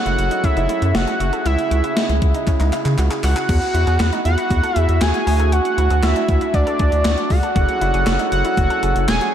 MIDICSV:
0, 0, Header, 1, 6, 480
1, 0, Start_track
1, 0, Key_signature, 4, "major"
1, 0, Tempo, 508475
1, 1374, Time_signature, 4, 2, 24, 8
1, 8822, End_track
2, 0, Start_track
2, 0, Title_t, "Analog synth lead"
2, 0, Program_c, 0, 81
2, 0, Note_on_c, 0, 78, 117
2, 417, Note_on_c, 0, 76, 110
2, 431, Note_off_c, 0, 78, 0
2, 898, Note_on_c, 0, 78, 102
2, 912, Note_off_c, 0, 76, 0
2, 1372, Note_off_c, 0, 78, 0
2, 1378, Note_on_c, 0, 76, 96
2, 2299, Note_off_c, 0, 76, 0
2, 3056, Note_on_c, 0, 78, 104
2, 3978, Note_off_c, 0, 78, 0
2, 4014, Note_on_c, 0, 78, 102
2, 4514, Note_off_c, 0, 78, 0
2, 4514, Note_on_c, 0, 76, 102
2, 4734, Note_on_c, 0, 80, 98
2, 4748, Note_off_c, 0, 76, 0
2, 5214, Note_on_c, 0, 78, 100
2, 5228, Note_off_c, 0, 80, 0
2, 5695, Note_on_c, 0, 76, 96
2, 5709, Note_off_c, 0, 78, 0
2, 6170, Note_off_c, 0, 76, 0
2, 6176, Note_on_c, 0, 74, 97
2, 6896, Note_on_c, 0, 78, 113
2, 6910, Note_off_c, 0, 74, 0
2, 7850, Note_off_c, 0, 78, 0
2, 7855, Note_on_c, 0, 78, 108
2, 8537, Note_off_c, 0, 78, 0
2, 8577, Note_on_c, 0, 80, 100
2, 8799, Note_off_c, 0, 80, 0
2, 8822, End_track
3, 0, Start_track
3, 0, Title_t, "Synth arpeggio sound"
3, 0, Program_c, 1, 84
3, 55, Note_on_c, 1, 64, 78
3, 249, Note_off_c, 1, 64, 0
3, 295, Note_on_c, 1, 63, 73
3, 392, Note_off_c, 1, 63, 0
3, 415, Note_on_c, 1, 61, 86
3, 512, Note_off_c, 1, 61, 0
3, 535, Note_on_c, 1, 63, 80
3, 632, Note_off_c, 1, 63, 0
3, 655, Note_on_c, 1, 64, 81
3, 850, Note_off_c, 1, 64, 0
3, 896, Note_on_c, 1, 66, 85
3, 993, Note_off_c, 1, 66, 0
3, 1016, Note_on_c, 1, 68, 78
3, 1113, Note_off_c, 1, 68, 0
3, 1136, Note_on_c, 1, 66, 78
3, 1233, Note_off_c, 1, 66, 0
3, 1256, Note_on_c, 1, 69, 74
3, 1353, Note_off_c, 1, 69, 0
3, 1376, Note_on_c, 1, 64, 94
3, 1570, Note_off_c, 1, 64, 0
3, 1615, Note_on_c, 1, 66, 78
3, 1712, Note_off_c, 1, 66, 0
3, 1735, Note_on_c, 1, 64, 80
3, 1832, Note_off_c, 1, 64, 0
3, 1856, Note_on_c, 1, 63, 86
3, 1953, Note_off_c, 1, 63, 0
3, 1976, Note_on_c, 1, 64, 76
3, 2170, Note_off_c, 1, 64, 0
3, 2215, Note_on_c, 1, 63, 76
3, 2312, Note_off_c, 1, 63, 0
3, 2335, Note_on_c, 1, 61, 88
3, 2433, Note_off_c, 1, 61, 0
3, 2456, Note_on_c, 1, 63, 79
3, 2553, Note_off_c, 1, 63, 0
3, 2575, Note_on_c, 1, 64, 83
3, 2770, Note_off_c, 1, 64, 0
3, 2815, Note_on_c, 1, 66, 88
3, 2912, Note_off_c, 1, 66, 0
3, 2934, Note_on_c, 1, 68, 77
3, 3032, Note_off_c, 1, 68, 0
3, 3055, Note_on_c, 1, 66, 78
3, 3152, Note_off_c, 1, 66, 0
3, 3174, Note_on_c, 1, 68, 74
3, 3272, Note_off_c, 1, 68, 0
3, 3295, Note_on_c, 1, 66, 94
3, 3489, Note_off_c, 1, 66, 0
3, 3534, Note_on_c, 1, 64, 77
3, 3632, Note_off_c, 1, 64, 0
3, 3654, Note_on_c, 1, 68, 78
3, 3752, Note_off_c, 1, 68, 0
3, 3774, Note_on_c, 1, 66, 84
3, 3872, Note_off_c, 1, 66, 0
3, 3894, Note_on_c, 1, 63, 76
3, 4089, Note_off_c, 1, 63, 0
3, 4135, Note_on_c, 1, 64, 76
3, 4232, Note_off_c, 1, 64, 0
3, 4254, Note_on_c, 1, 66, 89
3, 4351, Note_off_c, 1, 66, 0
3, 4374, Note_on_c, 1, 69, 79
3, 4472, Note_off_c, 1, 69, 0
3, 4494, Note_on_c, 1, 68, 82
3, 4689, Note_off_c, 1, 68, 0
3, 4734, Note_on_c, 1, 66, 88
3, 4831, Note_off_c, 1, 66, 0
3, 4854, Note_on_c, 1, 66, 74
3, 4952, Note_off_c, 1, 66, 0
3, 4975, Note_on_c, 1, 68, 82
3, 5072, Note_off_c, 1, 68, 0
3, 5094, Note_on_c, 1, 69, 74
3, 5192, Note_off_c, 1, 69, 0
3, 5215, Note_on_c, 1, 66, 94
3, 5409, Note_off_c, 1, 66, 0
3, 5454, Note_on_c, 1, 64, 78
3, 5552, Note_off_c, 1, 64, 0
3, 5575, Note_on_c, 1, 68, 78
3, 5672, Note_off_c, 1, 68, 0
3, 5695, Note_on_c, 1, 66, 86
3, 5792, Note_off_c, 1, 66, 0
3, 5814, Note_on_c, 1, 62, 78
3, 6009, Note_off_c, 1, 62, 0
3, 6054, Note_on_c, 1, 64, 74
3, 6152, Note_off_c, 1, 64, 0
3, 6174, Note_on_c, 1, 66, 87
3, 6272, Note_off_c, 1, 66, 0
3, 6294, Note_on_c, 1, 69, 78
3, 6392, Note_off_c, 1, 69, 0
3, 6415, Note_on_c, 1, 68, 83
3, 6609, Note_off_c, 1, 68, 0
3, 6654, Note_on_c, 1, 66, 87
3, 6752, Note_off_c, 1, 66, 0
3, 6774, Note_on_c, 1, 66, 75
3, 6872, Note_off_c, 1, 66, 0
3, 6895, Note_on_c, 1, 68, 79
3, 6992, Note_off_c, 1, 68, 0
3, 7014, Note_on_c, 1, 69, 73
3, 7112, Note_off_c, 1, 69, 0
3, 7134, Note_on_c, 1, 66, 95
3, 7329, Note_off_c, 1, 66, 0
3, 7374, Note_on_c, 1, 64, 78
3, 7471, Note_off_c, 1, 64, 0
3, 7494, Note_on_c, 1, 68, 78
3, 7592, Note_off_c, 1, 68, 0
3, 7614, Note_on_c, 1, 66, 86
3, 7712, Note_off_c, 1, 66, 0
3, 7735, Note_on_c, 1, 63, 75
3, 7930, Note_off_c, 1, 63, 0
3, 7975, Note_on_c, 1, 64, 77
3, 8072, Note_off_c, 1, 64, 0
3, 8095, Note_on_c, 1, 66, 91
3, 8193, Note_off_c, 1, 66, 0
3, 8216, Note_on_c, 1, 69, 80
3, 8313, Note_off_c, 1, 69, 0
3, 8336, Note_on_c, 1, 68, 80
3, 8530, Note_off_c, 1, 68, 0
3, 8575, Note_on_c, 1, 66, 87
3, 8673, Note_off_c, 1, 66, 0
3, 8695, Note_on_c, 1, 66, 76
3, 8793, Note_off_c, 1, 66, 0
3, 8822, End_track
4, 0, Start_track
4, 0, Title_t, "Woodwind section"
4, 0, Program_c, 2, 71
4, 0, Note_on_c, 2, 54, 78
4, 0, Note_on_c, 2, 61, 71
4, 0, Note_on_c, 2, 64, 72
4, 0, Note_on_c, 2, 68, 72
4, 0, Note_on_c, 2, 69, 85
4, 1214, Note_off_c, 2, 54, 0
4, 1214, Note_off_c, 2, 64, 0
4, 1214, Note_off_c, 2, 69, 0
4, 1375, Note_on_c, 2, 49, 82
4, 1375, Note_on_c, 2, 64, 73
4, 3257, Note_off_c, 2, 61, 0
4, 3257, Note_off_c, 2, 68, 0
4, 3276, Note_off_c, 2, 49, 0
4, 3276, Note_off_c, 2, 64, 0
4, 3294, Note_on_c, 2, 59, 83
4, 3294, Note_on_c, 2, 66, 88
4, 3295, Note_on_c, 2, 64, 74
4, 4958, Note_off_c, 2, 59, 0
4, 4958, Note_off_c, 2, 64, 0
4, 4974, Note_on_c, 2, 62, 75
4, 4975, Note_on_c, 2, 57, 80
4, 6974, Note_off_c, 2, 57, 0
4, 6974, Note_off_c, 2, 62, 0
4, 6974, Note_off_c, 2, 66, 0
4, 7134, Note_on_c, 2, 68, 75
4, 7135, Note_on_c, 2, 54, 82
4, 7135, Note_on_c, 2, 61, 76
4, 7135, Note_on_c, 2, 64, 72
4, 7135, Note_on_c, 2, 69, 88
4, 8822, Note_off_c, 2, 54, 0
4, 8822, Note_off_c, 2, 61, 0
4, 8822, Note_off_c, 2, 64, 0
4, 8822, Note_off_c, 2, 68, 0
4, 8822, Note_off_c, 2, 69, 0
4, 8822, End_track
5, 0, Start_track
5, 0, Title_t, "Analog synth bass"
5, 0, Program_c, 3, 38
5, 55, Note_on_c, 3, 30, 97
5, 160, Note_off_c, 3, 30, 0
5, 175, Note_on_c, 3, 30, 103
5, 280, Note_off_c, 3, 30, 0
5, 534, Note_on_c, 3, 30, 101
5, 639, Note_off_c, 3, 30, 0
5, 775, Note_on_c, 3, 42, 99
5, 880, Note_off_c, 3, 42, 0
5, 893, Note_on_c, 3, 30, 105
5, 999, Note_off_c, 3, 30, 0
5, 1134, Note_on_c, 3, 30, 94
5, 1239, Note_off_c, 3, 30, 0
5, 1374, Note_on_c, 3, 37, 108
5, 1479, Note_off_c, 3, 37, 0
5, 1615, Note_on_c, 3, 37, 100
5, 1719, Note_off_c, 3, 37, 0
5, 1975, Note_on_c, 3, 37, 98
5, 2080, Note_off_c, 3, 37, 0
5, 2095, Note_on_c, 3, 37, 91
5, 2200, Note_off_c, 3, 37, 0
5, 2456, Note_on_c, 3, 37, 99
5, 2560, Note_off_c, 3, 37, 0
5, 2694, Note_on_c, 3, 49, 100
5, 2799, Note_off_c, 3, 49, 0
5, 2815, Note_on_c, 3, 37, 99
5, 2920, Note_off_c, 3, 37, 0
5, 3055, Note_on_c, 3, 37, 100
5, 3160, Note_off_c, 3, 37, 0
5, 3295, Note_on_c, 3, 40, 112
5, 3400, Note_off_c, 3, 40, 0
5, 3534, Note_on_c, 3, 40, 101
5, 3639, Note_off_c, 3, 40, 0
5, 3654, Note_on_c, 3, 40, 94
5, 3759, Note_off_c, 3, 40, 0
5, 3775, Note_on_c, 3, 40, 106
5, 3880, Note_off_c, 3, 40, 0
5, 4014, Note_on_c, 3, 40, 106
5, 4119, Note_off_c, 3, 40, 0
5, 4253, Note_on_c, 3, 40, 111
5, 4359, Note_off_c, 3, 40, 0
5, 4495, Note_on_c, 3, 40, 96
5, 4600, Note_off_c, 3, 40, 0
5, 4614, Note_on_c, 3, 40, 98
5, 4719, Note_off_c, 3, 40, 0
5, 4734, Note_on_c, 3, 39, 85
5, 4839, Note_off_c, 3, 39, 0
5, 4974, Note_on_c, 3, 38, 102
5, 5289, Note_off_c, 3, 38, 0
5, 5454, Note_on_c, 3, 38, 98
5, 5559, Note_off_c, 3, 38, 0
5, 5574, Note_on_c, 3, 38, 97
5, 5679, Note_off_c, 3, 38, 0
5, 5694, Note_on_c, 3, 38, 112
5, 5799, Note_off_c, 3, 38, 0
5, 5935, Note_on_c, 3, 38, 101
5, 6040, Note_off_c, 3, 38, 0
5, 6173, Note_on_c, 3, 38, 107
5, 6279, Note_off_c, 3, 38, 0
5, 6416, Note_on_c, 3, 38, 107
5, 6520, Note_off_c, 3, 38, 0
5, 6536, Note_on_c, 3, 38, 98
5, 6640, Note_off_c, 3, 38, 0
5, 6655, Note_on_c, 3, 38, 94
5, 6760, Note_off_c, 3, 38, 0
5, 6894, Note_on_c, 3, 37, 83
5, 6999, Note_off_c, 3, 37, 0
5, 7135, Note_on_c, 3, 30, 111
5, 7240, Note_off_c, 3, 30, 0
5, 7375, Note_on_c, 3, 30, 99
5, 7480, Note_off_c, 3, 30, 0
5, 7495, Note_on_c, 3, 30, 93
5, 7600, Note_off_c, 3, 30, 0
5, 7616, Note_on_c, 3, 30, 102
5, 7720, Note_off_c, 3, 30, 0
5, 7856, Note_on_c, 3, 30, 107
5, 7960, Note_off_c, 3, 30, 0
5, 8094, Note_on_c, 3, 30, 107
5, 8199, Note_off_c, 3, 30, 0
5, 8336, Note_on_c, 3, 30, 101
5, 8441, Note_off_c, 3, 30, 0
5, 8456, Note_on_c, 3, 30, 95
5, 8560, Note_off_c, 3, 30, 0
5, 8576, Note_on_c, 3, 28, 97
5, 8680, Note_off_c, 3, 28, 0
5, 8822, End_track
6, 0, Start_track
6, 0, Title_t, "Drums"
6, 56, Note_on_c, 9, 42, 57
6, 150, Note_off_c, 9, 42, 0
6, 175, Note_on_c, 9, 42, 73
6, 270, Note_off_c, 9, 42, 0
6, 294, Note_on_c, 9, 42, 61
6, 388, Note_off_c, 9, 42, 0
6, 413, Note_on_c, 9, 36, 94
6, 417, Note_on_c, 9, 42, 81
6, 508, Note_off_c, 9, 36, 0
6, 511, Note_off_c, 9, 42, 0
6, 536, Note_on_c, 9, 42, 48
6, 631, Note_off_c, 9, 42, 0
6, 654, Note_on_c, 9, 42, 75
6, 748, Note_off_c, 9, 42, 0
6, 775, Note_on_c, 9, 42, 50
6, 869, Note_off_c, 9, 42, 0
6, 895, Note_on_c, 9, 38, 111
6, 896, Note_on_c, 9, 42, 69
6, 989, Note_off_c, 9, 38, 0
6, 990, Note_off_c, 9, 42, 0
6, 1015, Note_on_c, 9, 42, 52
6, 1109, Note_off_c, 9, 42, 0
6, 1136, Note_on_c, 9, 42, 74
6, 1231, Note_off_c, 9, 42, 0
6, 1254, Note_on_c, 9, 42, 49
6, 1349, Note_off_c, 9, 42, 0
6, 1375, Note_on_c, 9, 42, 80
6, 1469, Note_off_c, 9, 42, 0
6, 1496, Note_on_c, 9, 42, 50
6, 1591, Note_off_c, 9, 42, 0
6, 1618, Note_on_c, 9, 42, 80
6, 1712, Note_off_c, 9, 42, 0
6, 1736, Note_on_c, 9, 42, 50
6, 1830, Note_off_c, 9, 42, 0
6, 1857, Note_on_c, 9, 38, 107
6, 1859, Note_on_c, 9, 42, 73
6, 1951, Note_off_c, 9, 38, 0
6, 1953, Note_off_c, 9, 42, 0
6, 1977, Note_on_c, 9, 42, 56
6, 2071, Note_off_c, 9, 42, 0
6, 2095, Note_on_c, 9, 36, 100
6, 2095, Note_on_c, 9, 42, 73
6, 2189, Note_off_c, 9, 42, 0
6, 2190, Note_off_c, 9, 36, 0
6, 2214, Note_on_c, 9, 42, 60
6, 2308, Note_off_c, 9, 42, 0
6, 2333, Note_on_c, 9, 36, 92
6, 2335, Note_on_c, 9, 39, 58
6, 2337, Note_on_c, 9, 42, 79
6, 2428, Note_off_c, 9, 36, 0
6, 2429, Note_off_c, 9, 39, 0
6, 2431, Note_off_c, 9, 42, 0
6, 2456, Note_on_c, 9, 39, 53
6, 2458, Note_on_c, 9, 42, 50
6, 2551, Note_off_c, 9, 39, 0
6, 2552, Note_off_c, 9, 42, 0
6, 2574, Note_on_c, 9, 42, 77
6, 2576, Note_on_c, 9, 39, 71
6, 2669, Note_off_c, 9, 42, 0
6, 2670, Note_off_c, 9, 39, 0
6, 2696, Note_on_c, 9, 39, 69
6, 2696, Note_on_c, 9, 42, 51
6, 2790, Note_off_c, 9, 42, 0
6, 2791, Note_off_c, 9, 39, 0
6, 2816, Note_on_c, 9, 39, 81
6, 2817, Note_on_c, 9, 42, 72
6, 2911, Note_off_c, 9, 39, 0
6, 2911, Note_off_c, 9, 42, 0
6, 2935, Note_on_c, 9, 42, 56
6, 2936, Note_on_c, 9, 39, 74
6, 3030, Note_off_c, 9, 42, 0
6, 3031, Note_off_c, 9, 39, 0
6, 3057, Note_on_c, 9, 39, 97
6, 3058, Note_on_c, 9, 46, 74
6, 3151, Note_off_c, 9, 39, 0
6, 3152, Note_off_c, 9, 46, 0
6, 3174, Note_on_c, 9, 42, 47
6, 3176, Note_on_c, 9, 39, 86
6, 3269, Note_off_c, 9, 42, 0
6, 3270, Note_off_c, 9, 39, 0
6, 3295, Note_on_c, 9, 36, 125
6, 3295, Note_on_c, 9, 42, 80
6, 3295, Note_on_c, 9, 49, 99
6, 3389, Note_off_c, 9, 42, 0
6, 3390, Note_off_c, 9, 36, 0
6, 3390, Note_off_c, 9, 49, 0
6, 3416, Note_on_c, 9, 42, 49
6, 3510, Note_off_c, 9, 42, 0
6, 3536, Note_on_c, 9, 42, 83
6, 3631, Note_off_c, 9, 42, 0
6, 3654, Note_on_c, 9, 42, 50
6, 3748, Note_off_c, 9, 42, 0
6, 3775, Note_on_c, 9, 38, 114
6, 3775, Note_on_c, 9, 39, 92
6, 3777, Note_on_c, 9, 42, 74
6, 3870, Note_off_c, 9, 38, 0
6, 3870, Note_off_c, 9, 39, 0
6, 3871, Note_off_c, 9, 42, 0
6, 3895, Note_on_c, 9, 42, 59
6, 3989, Note_off_c, 9, 42, 0
6, 4014, Note_on_c, 9, 42, 74
6, 4108, Note_off_c, 9, 42, 0
6, 4132, Note_on_c, 9, 42, 61
6, 4226, Note_off_c, 9, 42, 0
6, 4253, Note_on_c, 9, 36, 91
6, 4256, Note_on_c, 9, 42, 83
6, 4347, Note_off_c, 9, 36, 0
6, 4350, Note_off_c, 9, 42, 0
6, 4376, Note_on_c, 9, 42, 50
6, 4470, Note_off_c, 9, 42, 0
6, 4493, Note_on_c, 9, 42, 78
6, 4588, Note_off_c, 9, 42, 0
6, 4613, Note_on_c, 9, 42, 50
6, 4708, Note_off_c, 9, 42, 0
6, 4734, Note_on_c, 9, 38, 117
6, 4734, Note_on_c, 9, 39, 101
6, 4734, Note_on_c, 9, 42, 75
6, 4828, Note_off_c, 9, 38, 0
6, 4828, Note_off_c, 9, 39, 0
6, 4829, Note_off_c, 9, 42, 0
6, 4853, Note_on_c, 9, 42, 54
6, 4947, Note_off_c, 9, 42, 0
6, 4976, Note_on_c, 9, 46, 76
6, 5070, Note_off_c, 9, 46, 0
6, 5093, Note_on_c, 9, 42, 47
6, 5188, Note_off_c, 9, 42, 0
6, 5214, Note_on_c, 9, 42, 82
6, 5309, Note_off_c, 9, 42, 0
6, 5335, Note_on_c, 9, 42, 51
6, 5429, Note_off_c, 9, 42, 0
6, 5457, Note_on_c, 9, 42, 82
6, 5551, Note_off_c, 9, 42, 0
6, 5574, Note_on_c, 9, 42, 51
6, 5668, Note_off_c, 9, 42, 0
6, 5695, Note_on_c, 9, 38, 113
6, 5695, Note_on_c, 9, 39, 96
6, 5697, Note_on_c, 9, 42, 72
6, 5789, Note_off_c, 9, 38, 0
6, 5789, Note_off_c, 9, 39, 0
6, 5791, Note_off_c, 9, 42, 0
6, 5815, Note_on_c, 9, 42, 61
6, 5909, Note_off_c, 9, 42, 0
6, 5934, Note_on_c, 9, 42, 76
6, 5935, Note_on_c, 9, 36, 104
6, 6028, Note_off_c, 9, 42, 0
6, 6029, Note_off_c, 9, 36, 0
6, 6052, Note_on_c, 9, 42, 60
6, 6147, Note_off_c, 9, 42, 0
6, 6173, Note_on_c, 9, 36, 91
6, 6176, Note_on_c, 9, 42, 82
6, 6267, Note_off_c, 9, 36, 0
6, 6270, Note_off_c, 9, 42, 0
6, 6295, Note_on_c, 9, 42, 49
6, 6390, Note_off_c, 9, 42, 0
6, 6413, Note_on_c, 9, 42, 76
6, 6416, Note_on_c, 9, 36, 90
6, 6508, Note_off_c, 9, 42, 0
6, 6510, Note_off_c, 9, 36, 0
6, 6534, Note_on_c, 9, 42, 52
6, 6628, Note_off_c, 9, 42, 0
6, 6654, Note_on_c, 9, 38, 118
6, 6654, Note_on_c, 9, 39, 102
6, 6655, Note_on_c, 9, 42, 74
6, 6749, Note_off_c, 9, 38, 0
6, 6749, Note_off_c, 9, 39, 0
6, 6750, Note_off_c, 9, 42, 0
6, 6774, Note_on_c, 9, 42, 56
6, 6869, Note_off_c, 9, 42, 0
6, 6894, Note_on_c, 9, 36, 87
6, 6896, Note_on_c, 9, 46, 74
6, 6988, Note_off_c, 9, 36, 0
6, 6991, Note_off_c, 9, 46, 0
6, 7014, Note_on_c, 9, 42, 49
6, 7108, Note_off_c, 9, 42, 0
6, 7134, Note_on_c, 9, 42, 80
6, 7135, Note_on_c, 9, 36, 124
6, 7229, Note_off_c, 9, 36, 0
6, 7229, Note_off_c, 9, 42, 0
6, 7256, Note_on_c, 9, 42, 50
6, 7350, Note_off_c, 9, 42, 0
6, 7377, Note_on_c, 9, 42, 82
6, 7472, Note_off_c, 9, 42, 0
6, 7495, Note_on_c, 9, 42, 51
6, 7589, Note_off_c, 9, 42, 0
6, 7615, Note_on_c, 9, 38, 113
6, 7615, Note_on_c, 9, 39, 94
6, 7617, Note_on_c, 9, 42, 75
6, 7709, Note_off_c, 9, 38, 0
6, 7709, Note_off_c, 9, 39, 0
6, 7711, Note_off_c, 9, 42, 0
6, 7735, Note_on_c, 9, 42, 58
6, 7829, Note_off_c, 9, 42, 0
6, 7854, Note_on_c, 9, 42, 76
6, 7948, Note_off_c, 9, 42, 0
6, 7973, Note_on_c, 9, 42, 60
6, 8068, Note_off_c, 9, 42, 0
6, 8094, Note_on_c, 9, 36, 91
6, 8096, Note_on_c, 9, 42, 79
6, 8188, Note_off_c, 9, 36, 0
6, 8190, Note_off_c, 9, 42, 0
6, 8216, Note_on_c, 9, 42, 50
6, 8311, Note_off_c, 9, 42, 0
6, 8334, Note_on_c, 9, 42, 75
6, 8429, Note_off_c, 9, 42, 0
6, 8456, Note_on_c, 9, 42, 52
6, 8550, Note_off_c, 9, 42, 0
6, 8575, Note_on_c, 9, 38, 117
6, 8575, Note_on_c, 9, 39, 100
6, 8576, Note_on_c, 9, 42, 73
6, 8670, Note_off_c, 9, 38, 0
6, 8670, Note_off_c, 9, 39, 0
6, 8671, Note_off_c, 9, 42, 0
6, 8695, Note_on_c, 9, 42, 55
6, 8790, Note_off_c, 9, 42, 0
6, 8822, End_track
0, 0, End_of_file